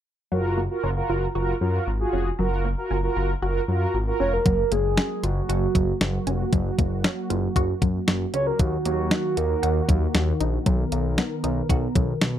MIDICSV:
0, 0, Header, 1, 7, 480
1, 0, Start_track
1, 0, Key_signature, 6, "major"
1, 0, Tempo, 517241
1, 296, Time_signature, 4, 2, 24, 8
1, 11497, End_track
2, 0, Start_track
2, 0, Title_t, "Soft synth lead"
2, 0, Program_c, 0, 80
2, 3900, Note_on_c, 0, 73, 102
2, 4022, Note_on_c, 0, 70, 104
2, 4036, Note_off_c, 0, 73, 0
2, 4380, Note_on_c, 0, 68, 100
2, 4394, Note_off_c, 0, 70, 0
2, 4859, Note_on_c, 0, 66, 90
2, 4873, Note_off_c, 0, 68, 0
2, 5818, Note_off_c, 0, 66, 0
2, 7740, Note_on_c, 0, 73, 101
2, 7857, Note_on_c, 0, 70, 96
2, 7871, Note_off_c, 0, 73, 0
2, 7979, Note_on_c, 0, 66, 97
2, 7993, Note_off_c, 0, 70, 0
2, 8213, Note_off_c, 0, 66, 0
2, 8219, Note_on_c, 0, 66, 94
2, 8696, Note_on_c, 0, 70, 91
2, 8710, Note_off_c, 0, 66, 0
2, 9176, Note_off_c, 0, 70, 0
2, 11497, End_track
3, 0, Start_track
3, 0, Title_t, "Analog polysynth"
3, 0, Program_c, 1, 90
3, 295, Note_on_c, 1, 65, 80
3, 296, Note_on_c, 1, 66, 75
3, 297, Note_on_c, 1, 70, 92
3, 567, Note_off_c, 1, 65, 0
3, 568, Note_off_c, 1, 66, 0
3, 568, Note_off_c, 1, 70, 0
3, 655, Note_on_c, 1, 70, 91
3, 656, Note_on_c, 1, 65, 80
3, 656, Note_on_c, 1, 66, 75
3, 837, Note_off_c, 1, 65, 0
3, 837, Note_off_c, 1, 66, 0
3, 837, Note_off_c, 1, 70, 0
3, 897, Note_on_c, 1, 65, 88
3, 897, Note_on_c, 1, 66, 77
3, 897, Note_on_c, 1, 70, 95
3, 1168, Note_off_c, 1, 65, 0
3, 1168, Note_off_c, 1, 66, 0
3, 1168, Note_off_c, 1, 70, 0
3, 1257, Note_on_c, 1, 65, 82
3, 1258, Note_on_c, 1, 66, 74
3, 1258, Note_on_c, 1, 70, 92
3, 1438, Note_off_c, 1, 65, 0
3, 1438, Note_off_c, 1, 66, 0
3, 1438, Note_off_c, 1, 70, 0
3, 1495, Note_on_c, 1, 65, 84
3, 1495, Note_on_c, 1, 70, 90
3, 1496, Note_on_c, 1, 66, 74
3, 1767, Note_off_c, 1, 65, 0
3, 1767, Note_off_c, 1, 70, 0
3, 1768, Note_off_c, 1, 66, 0
3, 1854, Note_on_c, 1, 65, 84
3, 1855, Note_on_c, 1, 66, 77
3, 1855, Note_on_c, 1, 68, 91
3, 2127, Note_off_c, 1, 65, 0
3, 2127, Note_off_c, 1, 66, 0
3, 2127, Note_off_c, 1, 68, 0
3, 2217, Note_on_c, 1, 65, 82
3, 2217, Note_on_c, 1, 66, 75
3, 2218, Note_on_c, 1, 70, 93
3, 2488, Note_off_c, 1, 65, 0
3, 2488, Note_off_c, 1, 66, 0
3, 2489, Note_off_c, 1, 70, 0
3, 2578, Note_on_c, 1, 65, 81
3, 2578, Note_on_c, 1, 66, 75
3, 2578, Note_on_c, 1, 70, 91
3, 2758, Note_off_c, 1, 65, 0
3, 2758, Note_off_c, 1, 66, 0
3, 2758, Note_off_c, 1, 70, 0
3, 2817, Note_on_c, 1, 65, 87
3, 2818, Note_on_c, 1, 66, 79
3, 2818, Note_on_c, 1, 70, 96
3, 3088, Note_off_c, 1, 65, 0
3, 3089, Note_off_c, 1, 66, 0
3, 3089, Note_off_c, 1, 70, 0
3, 3177, Note_on_c, 1, 65, 81
3, 3178, Note_on_c, 1, 66, 78
3, 3179, Note_on_c, 1, 70, 92
3, 3358, Note_off_c, 1, 65, 0
3, 3358, Note_off_c, 1, 66, 0
3, 3359, Note_off_c, 1, 70, 0
3, 3418, Note_on_c, 1, 65, 85
3, 3418, Note_on_c, 1, 66, 76
3, 3418, Note_on_c, 1, 70, 90
3, 3689, Note_off_c, 1, 65, 0
3, 3689, Note_off_c, 1, 66, 0
3, 3689, Note_off_c, 1, 70, 0
3, 3776, Note_on_c, 1, 66, 77
3, 3777, Note_on_c, 1, 65, 84
3, 3778, Note_on_c, 1, 70, 94
3, 4048, Note_off_c, 1, 65, 0
3, 4048, Note_off_c, 1, 66, 0
3, 4049, Note_off_c, 1, 70, 0
3, 11497, End_track
4, 0, Start_track
4, 0, Title_t, "Synth arpeggio sound"
4, 0, Program_c, 2, 84
4, 294, Note_on_c, 2, 54, 90
4, 498, Note_off_c, 2, 54, 0
4, 533, Note_on_c, 2, 58, 74
4, 738, Note_off_c, 2, 58, 0
4, 774, Note_on_c, 2, 61, 83
4, 978, Note_off_c, 2, 61, 0
4, 1016, Note_on_c, 2, 65, 79
4, 1219, Note_off_c, 2, 65, 0
4, 1255, Note_on_c, 2, 66, 96
4, 1458, Note_off_c, 2, 66, 0
4, 1494, Note_on_c, 2, 54, 74
4, 1698, Note_off_c, 2, 54, 0
4, 1976, Note_on_c, 2, 61, 83
4, 2179, Note_off_c, 2, 61, 0
4, 2216, Note_on_c, 2, 54, 89
4, 2419, Note_off_c, 2, 54, 0
4, 2458, Note_on_c, 2, 58, 78
4, 2660, Note_off_c, 2, 58, 0
4, 2697, Note_on_c, 2, 61, 82
4, 2900, Note_off_c, 2, 61, 0
4, 2937, Note_on_c, 2, 65, 81
4, 3140, Note_off_c, 2, 65, 0
4, 3178, Note_on_c, 2, 66, 93
4, 3380, Note_off_c, 2, 66, 0
4, 3417, Note_on_c, 2, 54, 76
4, 3620, Note_off_c, 2, 54, 0
4, 3898, Note_on_c, 2, 61, 79
4, 4100, Note_off_c, 2, 61, 0
4, 4138, Note_on_c, 2, 54, 89
4, 4340, Note_off_c, 2, 54, 0
4, 4379, Note_on_c, 2, 58, 77
4, 4581, Note_off_c, 2, 58, 0
4, 4618, Note_on_c, 2, 61, 82
4, 4820, Note_off_c, 2, 61, 0
4, 4856, Note_on_c, 2, 65, 79
4, 5059, Note_off_c, 2, 65, 0
4, 5096, Note_on_c, 2, 66, 96
4, 5299, Note_off_c, 2, 66, 0
4, 5338, Note_on_c, 2, 54, 76
4, 5540, Note_off_c, 2, 54, 0
4, 5817, Note_on_c, 2, 61, 80
4, 6020, Note_off_c, 2, 61, 0
4, 6056, Note_on_c, 2, 54, 91
4, 6259, Note_off_c, 2, 54, 0
4, 6297, Note_on_c, 2, 58, 78
4, 6500, Note_off_c, 2, 58, 0
4, 6537, Note_on_c, 2, 61, 85
4, 6740, Note_off_c, 2, 61, 0
4, 6776, Note_on_c, 2, 65, 80
4, 6979, Note_off_c, 2, 65, 0
4, 7017, Note_on_c, 2, 66, 97
4, 7220, Note_off_c, 2, 66, 0
4, 7256, Note_on_c, 2, 54, 78
4, 7459, Note_off_c, 2, 54, 0
4, 7738, Note_on_c, 2, 61, 79
4, 7940, Note_off_c, 2, 61, 0
4, 7977, Note_on_c, 2, 54, 91
4, 8179, Note_off_c, 2, 54, 0
4, 8218, Note_on_c, 2, 58, 75
4, 8420, Note_off_c, 2, 58, 0
4, 8455, Note_on_c, 2, 63, 85
4, 8659, Note_off_c, 2, 63, 0
4, 8696, Note_on_c, 2, 66, 79
4, 8899, Note_off_c, 2, 66, 0
4, 8935, Note_on_c, 2, 78, 97
4, 9139, Note_off_c, 2, 78, 0
4, 9174, Note_on_c, 2, 54, 75
4, 9378, Note_off_c, 2, 54, 0
4, 9654, Note_on_c, 2, 63, 80
4, 9858, Note_off_c, 2, 63, 0
4, 9895, Note_on_c, 2, 54, 89
4, 10099, Note_off_c, 2, 54, 0
4, 10135, Note_on_c, 2, 58, 79
4, 10339, Note_off_c, 2, 58, 0
4, 10374, Note_on_c, 2, 59, 81
4, 10578, Note_off_c, 2, 59, 0
4, 10613, Note_on_c, 2, 63, 81
4, 10817, Note_off_c, 2, 63, 0
4, 10853, Note_on_c, 2, 66, 99
4, 11057, Note_off_c, 2, 66, 0
4, 11093, Note_on_c, 2, 54, 74
4, 11297, Note_off_c, 2, 54, 0
4, 11497, End_track
5, 0, Start_track
5, 0, Title_t, "Analog synth pad"
5, 0, Program_c, 3, 89
5, 4136, Note_on_c, 3, 54, 80
5, 4136, Note_on_c, 3, 58, 75
5, 4136, Note_on_c, 3, 66, 91
5, 7939, Note_off_c, 3, 54, 0
5, 7939, Note_off_c, 3, 58, 0
5, 7939, Note_off_c, 3, 66, 0
5, 7977, Note_on_c, 3, 51, 81
5, 7977, Note_on_c, 3, 66, 86
5, 7979, Note_on_c, 3, 58, 76
5, 9878, Note_off_c, 3, 58, 0
5, 9878, Note_off_c, 3, 66, 0
5, 9897, Note_on_c, 3, 59, 73
5, 9897, Note_on_c, 3, 70, 86
5, 11497, Note_off_c, 3, 51, 0
5, 11497, Note_off_c, 3, 59, 0
5, 11497, Note_off_c, 3, 70, 0
5, 11497, End_track
6, 0, Start_track
6, 0, Title_t, "Analog synth bass"
6, 0, Program_c, 4, 38
6, 296, Note_on_c, 4, 30, 100
6, 632, Note_off_c, 4, 30, 0
6, 775, Note_on_c, 4, 30, 110
6, 944, Note_off_c, 4, 30, 0
6, 1016, Note_on_c, 4, 30, 97
6, 1184, Note_off_c, 4, 30, 0
6, 1256, Note_on_c, 4, 30, 97
6, 1424, Note_off_c, 4, 30, 0
6, 1496, Note_on_c, 4, 42, 96
6, 1664, Note_off_c, 4, 42, 0
6, 1736, Note_on_c, 4, 32, 89
6, 1904, Note_off_c, 4, 32, 0
6, 1977, Note_on_c, 4, 29, 89
6, 2144, Note_off_c, 4, 29, 0
6, 2217, Note_on_c, 4, 30, 104
6, 2552, Note_off_c, 4, 30, 0
6, 2697, Note_on_c, 4, 30, 100
6, 2865, Note_off_c, 4, 30, 0
6, 2937, Note_on_c, 4, 30, 107
6, 3105, Note_off_c, 4, 30, 0
6, 3175, Note_on_c, 4, 30, 99
6, 3343, Note_off_c, 4, 30, 0
6, 3417, Note_on_c, 4, 42, 88
6, 3585, Note_off_c, 4, 42, 0
6, 3657, Note_on_c, 4, 32, 94
6, 3825, Note_off_c, 4, 32, 0
6, 3898, Note_on_c, 4, 29, 92
6, 4065, Note_off_c, 4, 29, 0
6, 4136, Note_on_c, 4, 30, 102
6, 4304, Note_off_c, 4, 30, 0
6, 4376, Note_on_c, 4, 30, 89
6, 4628, Note_off_c, 4, 30, 0
6, 4856, Note_on_c, 4, 30, 107
6, 5024, Note_off_c, 4, 30, 0
6, 5096, Note_on_c, 4, 30, 106
6, 5264, Note_off_c, 4, 30, 0
6, 5336, Note_on_c, 4, 30, 99
6, 5504, Note_off_c, 4, 30, 0
6, 5575, Note_on_c, 4, 30, 96
6, 5743, Note_off_c, 4, 30, 0
6, 5816, Note_on_c, 4, 29, 89
6, 5984, Note_off_c, 4, 29, 0
6, 6057, Note_on_c, 4, 30, 104
6, 6225, Note_off_c, 4, 30, 0
6, 6296, Note_on_c, 4, 30, 83
6, 6548, Note_off_c, 4, 30, 0
6, 6775, Note_on_c, 4, 30, 110
6, 6943, Note_off_c, 4, 30, 0
6, 7014, Note_on_c, 4, 30, 102
6, 7183, Note_off_c, 4, 30, 0
6, 7255, Note_on_c, 4, 30, 93
6, 7423, Note_off_c, 4, 30, 0
6, 7496, Note_on_c, 4, 30, 103
6, 7664, Note_off_c, 4, 30, 0
6, 7736, Note_on_c, 4, 37, 86
6, 7904, Note_off_c, 4, 37, 0
6, 7975, Note_on_c, 4, 39, 101
6, 8143, Note_off_c, 4, 39, 0
6, 8217, Note_on_c, 4, 39, 96
6, 8469, Note_off_c, 4, 39, 0
6, 8697, Note_on_c, 4, 39, 99
6, 8865, Note_off_c, 4, 39, 0
6, 8937, Note_on_c, 4, 39, 99
6, 9105, Note_off_c, 4, 39, 0
6, 9175, Note_on_c, 4, 39, 102
6, 9343, Note_off_c, 4, 39, 0
6, 9415, Note_on_c, 4, 39, 105
6, 9583, Note_off_c, 4, 39, 0
6, 9655, Note_on_c, 4, 34, 85
6, 9823, Note_off_c, 4, 34, 0
6, 9895, Note_on_c, 4, 35, 98
6, 10063, Note_off_c, 4, 35, 0
6, 10135, Note_on_c, 4, 35, 87
6, 10387, Note_off_c, 4, 35, 0
6, 10614, Note_on_c, 4, 35, 100
6, 10783, Note_off_c, 4, 35, 0
6, 10853, Note_on_c, 4, 35, 98
6, 11022, Note_off_c, 4, 35, 0
6, 11094, Note_on_c, 4, 35, 97
6, 11263, Note_off_c, 4, 35, 0
6, 11335, Note_on_c, 4, 35, 99
6, 11497, Note_off_c, 4, 35, 0
6, 11497, End_track
7, 0, Start_track
7, 0, Title_t, "Drums"
7, 4136, Note_on_c, 9, 36, 102
7, 4136, Note_on_c, 9, 42, 75
7, 4229, Note_off_c, 9, 36, 0
7, 4229, Note_off_c, 9, 42, 0
7, 4377, Note_on_c, 9, 42, 69
7, 4470, Note_off_c, 9, 42, 0
7, 4617, Note_on_c, 9, 38, 106
7, 4617, Note_on_c, 9, 42, 62
7, 4709, Note_off_c, 9, 38, 0
7, 4710, Note_off_c, 9, 42, 0
7, 4859, Note_on_c, 9, 42, 67
7, 4951, Note_off_c, 9, 42, 0
7, 5100, Note_on_c, 9, 42, 68
7, 5193, Note_off_c, 9, 42, 0
7, 5336, Note_on_c, 9, 36, 94
7, 5339, Note_on_c, 9, 42, 74
7, 5429, Note_off_c, 9, 36, 0
7, 5432, Note_off_c, 9, 42, 0
7, 5577, Note_on_c, 9, 38, 108
7, 5577, Note_on_c, 9, 42, 64
7, 5670, Note_off_c, 9, 38, 0
7, 5670, Note_off_c, 9, 42, 0
7, 5818, Note_on_c, 9, 42, 64
7, 5911, Note_off_c, 9, 42, 0
7, 6056, Note_on_c, 9, 36, 106
7, 6058, Note_on_c, 9, 42, 76
7, 6149, Note_off_c, 9, 36, 0
7, 6151, Note_off_c, 9, 42, 0
7, 6297, Note_on_c, 9, 36, 89
7, 6298, Note_on_c, 9, 42, 70
7, 6390, Note_off_c, 9, 36, 0
7, 6390, Note_off_c, 9, 42, 0
7, 6536, Note_on_c, 9, 38, 111
7, 6537, Note_on_c, 9, 42, 61
7, 6629, Note_off_c, 9, 38, 0
7, 6629, Note_off_c, 9, 42, 0
7, 6778, Note_on_c, 9, 42, 66
7, 6870, Note_off_c, 9, 42, 0
7, 7014, Note_on_c, 9, 36, 83
7, 7019, Note_on_c, 9, 42, 69
7, 7107, Note_off_c, 9, 36, 0
7, 7112, Note_off_c, 9, 42, 0
7, 7255, Note_on_c, 9, 36, 93
7, 7257, Note_on_c, 9, 42, 73
7, 7348, Note_off_c, 9, 36, 0
7, 7350, Note_off_c, 9, 42, 0
7, 7496, Note_on_c, 9, 38, 113
7, 7496, Note_on_c, 9, 42, 64
7, 7589, Note_off_c, 9, 38, 0
7, 7589, Note_off_c, 9, 42, 0
7, 7737, Note_on_c, 9, 42, 65
7, 7830, Note_off_c, 9, 42, 0
7, 7976, Note_on_c, 9, 36, 105
7, 7976, Note_on_c, 9, 42, 77
7, 8069, Note_off_c, 9, 36, 0
7, 8069, Note_off_c, 9, 42, 0
7, 8217, Note_on_c, 9, 42, 70
7, 8310, Note_off_c, 9, 42, 0
7, 8456, Note_on_c, 9, 38, 109
7, 8456, Note_on_c, 9, 42, 63
7, 8549, Note_off_c, 9, 38, 0
7, 8549, Note_off_c, 9, 42, 0
7, 8698, Note_on_c, 9, 42, 68
7, 8790, Note_off_c, 9, 42, 0
7, 8938, Note_on_c, 9, 42, 71
7, 9031, Note_off_c, 9, 42, 0
7, 9175, Note_on_c, 9, 36, 91
7, 9177, Note_on_c, 9, 42, 76
7, 9267, Note_off_c, 9, 36, 0
7, 9270, Note_off_c, 9, 42, 0
7, 9415, Note_on_c, 9, 38, 113
7, 9415, Note_on_c, 9, 42, 64
7, 9508, Note_off_c, 9, 38, 0
7, 9508, Note_off_c, 9, 42, 0
7, 9656, Note_on_c, 9, 42, 64
7, 9749, Note_off_c, 9, 42, 0
7, 9895, Note_on_c, 9, 36, 100
7, 9895, Note_on_c, 9, 42, 74
7, 9987, Note_off_c, 9, 36, 0
7, 9988, Note_off_c, 9, 42, 0
7, 10134, Note_on_c, 9, 42, 71
7, 10227, Note_off_c, 9, 42, 0
7, 10374, Note_on_c, 9, 38, 106
7, 10375, Note_on_c, 9, 42, 64
7, 10467, Note_off_c, 9, 38, 0
7, 10468, Note_off_c, 9, 42, 0
7, 10615, Note_on_c, 9, 42, 69
7, 10708, Note_off_c, 9, 42, 0
7, 10853, Note_on_c, 9, 36, 86
7, 10857, Note_on_c, 9, 42, 69
7, 10946, Note_off_c, 9, 36, 0
7, 10950, Note_off_c, 9, 42, 0
7, 11094, Note_on_c, 9, 36, 92
7, 11097, Note_on_c, 9, 42, 75
7, 11187, Note_off_c, 9, 36, 0
7, 11190, Note_off_c, 9, 42, 0
7, 11335, Note_on_c, 9, 38, 110
7, 11335, Note_on_c, 9, 42, 64
7, 11428, Note_off_c, 9, 38, 0
7, 11428, Note_off_c, 9, 42, 0
7, 11497, End_track
0, 0, End_of_file